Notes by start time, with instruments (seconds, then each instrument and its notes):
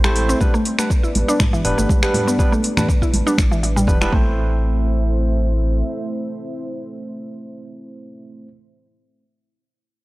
Already playing: sub bass A1, analog synth pad A3 C4 E4 C5 E5
0.04 tine electric piano A3 C4 E4 C5, synth pluck G4, finger snap, high conga, shaker
0.16 open hi-hat
0.29 synth pluck C4, shaker
0.40 tine electric piano G3 B3 D4 B4, analog synth pad G3 B3 D4 B4 D5, kick, high conga, shaker
0.54 synth pluck A3, shaker
0.65 open hi-hat
0.79 tine electric piano G3 B3 D4 B4, synth pluck A3, finger snap, shaker
0.90 kick, shaker
1.03 synth pluck E4, shaker
1.15 sub bass A1, open hi-hat, high conga
1.28 tine electric piano G3 B3 D4 B4, synth pluck D4, shaker
1.40 finger snap, kick, mid tom, high conga, shaker
1.53 synth pluck E3, shaker
1.65 sub bass E1, tine electric piano G3 B3 D4 B4, mid tom, open hi-hat
1.78 sub bass G1, synth pluck A3, shaker
1.89 kick, high conga, shaker
2.03 tine electric piano G3 B3 D4 B4, synth pluck G4, finger snap, shaker
2.14 mid tom, open hi-hat, high conga
2.27 synth pluck B3, shaker
2.39 tine electric piano G3 B3 D4 B4, kick, high conga, shaker
2.52 synth pluck A3, shaker
2.64 open hi-hat
2.77 tine electric piano G3 B3 D4 B4, synth pluck A3, finger snap, mid tom, low conga, shaker
2.89 kick, shaker
3.02 synth pluck E4, kick, shaker
3.13 sub bass A1, open hi-hat, high conga
3.26 tine electric piano G3 B3 D4 B4, synth pluck D4, shaker
3.38 sub bass A1, finger snap, kick, high conga, shaker
3.51 synth pluck E3, shaker
3.63 synth pluck E3, open hi-hat
3.76 synth pluck G3, mid tom, shaker
3.87 sub bass E1, tine electric piano G3 B3 D4 B4, kick, low conga, shaker
4.01 tine electric piano G3 B3 D4 B4, synth pluck E4, finger snap, high conga, shaker
4.12 sub bass A1, analog synth pad A3 C4 E4 C5 E5, tine electric piano A3 C4 E4 C5, synth pluck A3, kick